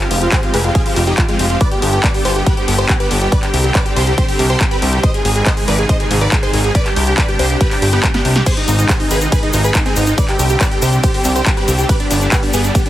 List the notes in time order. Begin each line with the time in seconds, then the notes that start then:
0.00 F3 G#3 C4 F4 G4, clap, closed hi-hat
0.11 F1 F4, open hi-hat
0.21 F3 G#3 C4 F4 G4, closed hi-hat
0.32 G#4 C5, kick, clap, closed hi-hat
0.43 F3 G#3 C4 F4 G4, closed hi-hat
0.54 F1 G#4 B4, open hi-hat
0.64 F3 G#3 C4 F4 G4, closed hi-hat
0.75 F4 G#4, kick, closed hi-hat
0.86 F3 G#3 C4 F4 G4, open hi-hat
0.96 F1 F4, open hi-hat
1.07 F3 G#3 C4 D#4 G4, closed hi-hat
1.18 F4, kick, clap, closed hi-hat
1.29 F3 G#3 C4 F4 G4, closed hi-hat
1.39 F1 F4, open hi-hat
1.50 F3 G#3 C4 F4 G4, closed hi-hat
1.61 B4 D5, kick, closed hi-hat
1.71 D3 G3 B3 G4, closed hi-hat
1.82 G1 G4, open hi-hat
1.93 D3 G3 B3 G4, closed hi-hat
2.03 B4 D5, kick, clap, closed hi-hat
2.14 D3 G3 B3 G4, open hi-hat
2.25 G1 G4 C5, open hi-hat
2.36 D3 G3 B3 G4, closed hi-hat
2.46 G4 B4, kick, closed hi-hat
2.57 D3 G3 B3 G4, closed hi-hat
2.68 G1 G4, open hi-hat
2.78 D3 G3 B3 G4 C5, closed hi-hat
2.89 G4, kick, clap, closed hi-hat
3.00 D3 G3 B3 G4 B4, closed hi-hat
3.11 G1 G4, open hi-hat
3.21 D3 G3 B3 G4, closed hi-hat
3.32 B4 D5, kick, closed hi-hat
3.43 D3 G3 C4 G4, clap, closed hi-hat
3.53 C2 G4, open hi-hat
3.64 D3 G3 C4 G4, closed hi-hat
3.75 B4 D5, kick, clap, closed hi-hat
3.85 D3 G3 C4 G4, closed hi-hat
3.96 C2 G4 C5, open hi-hat
4.07 D3 G3 C4 G4, closed hi-hat
4.18 G4 C5, kick, closed hi-hat
4.28 D3 G3 C4 G4, open hi-hat
4.39 C2 G4, open hi-hat
4.50 D3 G3 C4 G4 C5, closed hi-hat
4.61 kick, clap, closed hi-hat
4.71 D3 G3 C4 G4 B4, closed hi-hat
4.82 C2 G4, open hi-hat
4.93 D3 G3 C4 G4, closed hi-hat
5.03 C5 D#5, kick, closed hi-hat
5.14 C3 D#3 G#3 D#4 G#4, closed hi-hat
5.25 G#1 G#4, open hi-hat
5.36 C3 D#3 G#3 D#4 G#4, closed hi-hat
5.46 C5 D#5, kick, clap, closed hi-hat
5.57 C3 D#3 G#3 D#4 G#4, open hi-hat
5.68 G#1 B4 D5, open hi-hat
5.79 C3 D#3 G#3 D#4 G#4, closed hi-hat
5.89 C5 D#5, kick, closed hi-hat
6.00 C3 D#3 G#3 D#4 G#4, closed hi-hat
6.11 G#1 G#4, open hi-hat
6.21 C3 D#3 G#3 D#4 B4 D5, closed hi-hat
6.32 G#4, kick, clap, closed hi-hat
6.43 C3 D#3 G#3 D#4 G#4 C5, closed hi-hat
6.53 G#1 G#4, open hi-hat
6.64 C3 D#3 G#3 D#4 G#4, closed hi-hat
6.75 B4 D5, kick, closed hi-hat
6.86 C3 G3 D4 G4, clap, closed hi-hat
6.96 C2 G4, open hi-hat
7.07 C3 G3 D4 G4, closed hi-hat
7.18 B4 D5, kick, clap, closed hi-hat
7.28 C3 G3 D4 G4, closed hi-hat
7.39 C2 G4 C5, open hi-hat
7.50 C3 G3 D4 G4, closed hi-hat
7.61 G4 B4, kick, closed hi-hat
7.71 C3 G3 D4 G4, clap, open hi-hat
7.82 G1 G4, open hi-hat
7.93 C3 G3 B3 D4 G4, closed hi-hat
8.04 kick, snare, clap, closed hi-hat
8.14 C3 G3 B3 D4 G4, snare, closed hi-hat
8.25 C2 G4, open hi-hat
8.36 C3 G3 D4 G4, snare, closed hi-hat
8.46 G#4 C5, kick, closed hi-hat, crash, ride, shaker
8.57 C3 D#3 G#3 D#4, closed hi-hat
8.68 G#1 D#4, open hi-hat, shaker
8.78 C3 D#3 G#3 D#4, closed hi-hat, shaker
8.89 G#4 C5, kick, clap, closed hi-hat, ride, shaker
8.99 C3 D#3 G#3 D#4, open hi-hat
9.11 G#1 G#4 B4, open hi-hat, shaker
9.21 C3 D#3 G#3 D#4, closed hi-hat, shaker
9.32 G#4 B4, kick, closed hi-hat, ride, shaker
9.43 C3 D#3 G#3 D#4, closed hi-hat
9.53 G#1 D#4, open hi-hat, shaker
9.64 C3 D#3 G#3 D#4 G#4 B4, closed hi-hat, shaker
9.74 D#4, kick, clap, closed hi-hat, ride, shaker
9.86 C3 D#3 G#3 C4 D#4 G#4, closed hi-hat
9.96 G#1 D#4, open hi-hat, shaker
10.06 C3 D#3 G#3 D#4, closed hi-hat, shaker
10.18 B4 D5, kick, closed hi-hat, ride, shaker
10.28 D3 G3 C4 G4, clap, closed hi-hat
10.39 C2 G4, open hi-hat, shaker
10.49 D3 G3 C4 G4, closed hi-hat, shaker
10.61 B4 D5, kick, clap, closed hi-hat, ride, shaker
10.71 D3 G3 C4 G4, closed hi-hat
10.82 C2 G4 C5, open hi-hat, shaker
10.93 D3 G3 C4 G4, closed hi-hat, shaker
11.03 G4 C5, kick, closed hi-hat, ride, shaker
11.14 D3 G3 C4 G4, open hi-hat
11.24 C2 G4, open hi-hat, shaker
11.36 D3 G3 C4 G4 C5, closed hi-hat, shaker
11.46 G4, kick, clap, closed hi-hat, ride, shaker
11.57 D3 G3 C4 G4 B4, closed hi-hat
11.68 C2 G4, open hi-hat, shaker
11.78 D3 G3 C4 G4, closed hi-hat, shaker
11.89 G4 B4, kick, closed hi-hat, ride, shaker
12.00 D3 G3 B3 D4 G4, closed hi-hat
12.11 G1 D4, open hi-hat, shaker
12.21 D3 G3 B3 D4 G4, closed hi-hat, shaker
12.32 G4 B4, kick, clap, closed hi-hat, ride, shaker
12.43 D3 G3 B3 D4 G4, open hi-hat
12.53 G1 B3 G#4, open hi-hat, shaker
12.64 D3 G3 B3 D4 G4, closed hi-hat, shaker
12.75 B3 G4, kick, closed hi-hat, ride, shaker
12.86 D3 G3 B3 D4 G4, closed hi-hat